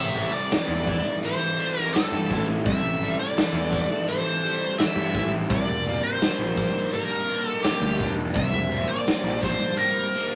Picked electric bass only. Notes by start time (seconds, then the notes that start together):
Already playing: A1
0.68 E2
2.12 G2
2.31 A1
2.66 C2
2.82 A1
3.53 E2
4.96 G2
5.14 A1
5.50 C2
5.68 E1
6.39 A#1
7.82 D2
7.99 E1
8.35 C2
8.53 E1
9.24 A#1